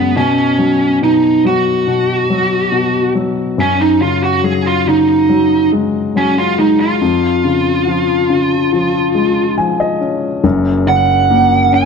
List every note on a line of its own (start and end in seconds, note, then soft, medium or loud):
0.00 0.15 F#2 soft
0.00 0.17 C#3 medium
0.00 0.18 G#3 medium
0.00 0.17 B3 medium
0.16 1.00 B2 medium
0.16 0.98 C#4 medium
0.58 1.43 F#3 soft
1.02 1.86 B2 soft
1.02 1.42 D#4 medium
1.45 2.28 F#3 soft
1.45 3.13 F#4 medium
1.87 2.70 B2 soft
2.30 3.14 F#3 soft
2.72 3.55 B2 soft
3.15 3.57 F#3 soft
3.58 6.97 F#2 medium
3.58 3.81 C#4 medium
3.81 4.01 D#4 medium
4.01 4.84 C#3 soft
4.01 4.23 F4 medium
4.24 4.43 F#4 medium
4.43 5.28 F#3 soft
4.43 4.66 G#4 medium
4.66 4.88 F4 medium
4.86 6.54 C#3 soft
4.86 5.70 D#4 medium
5.29 6.14 F#3 soft
5.73 6.57 G#3 medium
6.16 6.99 F#3 soft
6.16 6.38 C#4 medium
6.38 6.59 F4 medium
6.59 7.00 G#3 soft
6.59 6.79 D#4 medium
6.80 9.55 F4 medium
7.01 10.40 F2 medium
7.44 8.28 C#3 soft
7.87 8.71 F3 soft
8.30 9.97 C#3 soft
8.73 9.56 F3 medium
9.15 10.40 G#3 soft
9.58 10.41 F3 soft
9.58 9.78 G#5 medium
9.80 10.40 D#5 medium
10.01 10.43 C#4 soft
10.44 11.85 F#1 medium
10.44 11.85 F#2 medium
10.87 11.85 C#3 medium
10.87 11.74 F#5 loud
11.30 11.85 A#3 medium
11.72 11.85 C#4 medium
11.72 11.85 G#5 loud